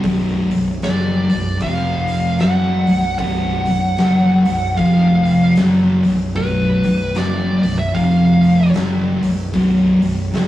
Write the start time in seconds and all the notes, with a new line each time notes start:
0.04 B0 B1 F#2 B2, kick, open hi-hat
0.51 B0 B1 F#2, open hi-hat
0.82 F#1 F#2 C#3 F#3 D5, snare, open hi-hat
1.30 B0 B1 F#2, open hi-hat
1.60 F1 F2 C3 F3 F5, kick, open hi-hat
2.08 open hi-hat
2.39 F#1 F#2 C#3 F#3 F#5, snare, open hi-hat
2.87 B0 B1 F#2, open hi-hat
3.18 B0 B1 F#2 B2 F#5, kick, open hi-hat
3.66 B0 B1 F#2, open hi-hat
3.97 F#1 F#2 C#3 F#3, snare, open hi-hat
4.45 B0 B1 F#2, open hi-hat
4.77 F1 F2 C3 F3 F5, kick, open hi-hat
5.25 open hi-hat
5.56 F#1 F#2 C#3 F#3, snare, open hi-hat
6.03 B0 B1 F#2, open hi-hat
6.35 B0 B1 F#2 B2 B4, kick, open hi-hat
6.83 B0 B1 F#2, open hi-hat
7.15 F#1 F#2 C#3 F#3 D5, snare, open hi-hat
7.62 B0 B1 F#2 D5, open hi-hat
7.79 E5
7.94 F1 F2 C3 F3 F5, kick, open hi-hat
8.43 open hi-hat
8.73 F#1 F#2 C#3 F#3, snare, open hi-hat
9.21 B0 B1 F#2, open hi-hat
9.54 B0 B1 F#2 B2, kick, open hi-hat
10.01 B0 B1 F#2, open hi-hat
10.34 F#1 F#2 C#3 F#3, snare, open hi-hat